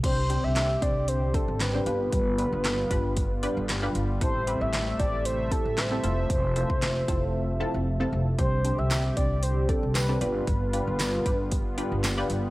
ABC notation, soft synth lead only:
X:1
M:4/4
L:1/16
Q:1/4=115
K:C
V:1 name="Soft synth lead"
c3 e3 d2 c2 A2 B4 | B12 z4 | c3 e3 d2 c2 A2 c4 | c12 z4 |
c3 e3 d2 c2 A2 B2 B2- | B12 z4 |]